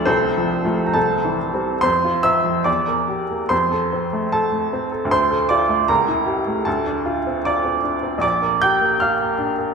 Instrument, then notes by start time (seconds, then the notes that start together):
upright piano
Already playing: A3 A4 D5
0.05 C2 C4 A4 C5
0.37 F3
0.64 F3 A3
0.86 A#5
0.94 C2 A4 A5
1.24 E3
1.54 G3 C4
1.81 F2 C5 C6
2.05 F4
2.23 C4 E5 E6
2.44 F3
2.64 E2 D5 D6
2.88 A#4
3.08 G4
3.31 A#3
3.49 F2 C5 C6
3.72 A4
3.93 C4
4.13 A3
4.32 A4 A5
4.52 A3
4.73 C4
4.92 A4
5.05 D2
5.11 C5 C6
5.31 A4
5.49 F4 D5 D6
5.69 A3
5.88 C#2 A#4 A#5
6.08 E4
6.26 G4
6.47 A3
6.65 D2 A4 A5
6.86 D4
7.06 F4
7.27 C4
7.45 F4 D5 D6
7.65 C4
7.84 D4
8.03 C4
8.18 A#1 D6
8.22 D5
8.42 A#4
8.62 G4 G5 G6
8.81 A#3
9.00 G4 F5 F6
9.22 A#3
9.39 D4
9.58 A#4